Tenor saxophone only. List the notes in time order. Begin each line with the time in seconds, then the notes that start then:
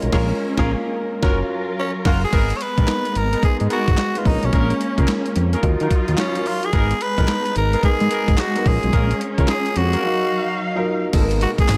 1.79 C#4
2.07 F4
2.24 G#4
2.57 C#5
2.62 B4
3.17 A#4
3.45 G#4
3.72 F#4
4.17 F4
4.27 D#4
4.45 C#4
6.20 C#4
6.47 F4
6.65 G#4
7.02 B4
7.57 A#4
7.85 G#4
8.40 F#4
8.67 G#4
9.50 G#4
9.77 F#4
11.42 F#4
11.60 G#4